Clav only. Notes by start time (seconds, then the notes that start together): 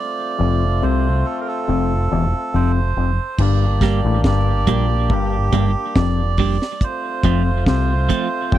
0.39 F2
0.82 C3
1.68 F2
2.12 E2
2.54 F2
2.98 F2
3.40 G2
4.05 A2
4.26 G2
4.69 A#2
5.11 G2
5.53 G2
5.96 F2
7.24 F2
7.67 C3
8.52 F2